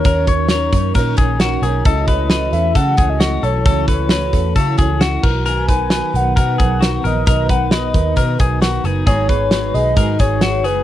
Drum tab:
CC |--------|--------|-------x|--------|
HH |xxxxxxxx|xxxxxxxx|xxxxxxx-|xxxxxxxx|
SD |--o---o-|--o---o-|--o---o-|--o---o-|
BD |oo-ooo--|oo--oo--|oo-ooo-o|-o--oo--|

CC |--------|--------|
HH |xxxxxxxx|xxxxxxxx|
SD |--o---o-|--o---o-|
BD |oo-ooo--|oo--oo--|